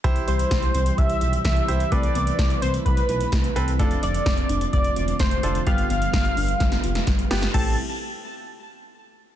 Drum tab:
CC |----------------|----------------|----------------|----------------|
HH |xxxxxxxxxxxxxxxx|xxxxxxxxxxxxxxxx|xxxxxxxxxxxxxxxx|xxxxxxoxxxxxxxox|
SD |----o-------o---|----o-------o---|----o-------o---|----o---oo-oo-oo|
BD |o---o---o---o---|o---o---o---o---|o---o---o---o---|o---o---o---o---|

CC |x---------------|
HH |----------------|
SD |----------------|
BD |o---------------|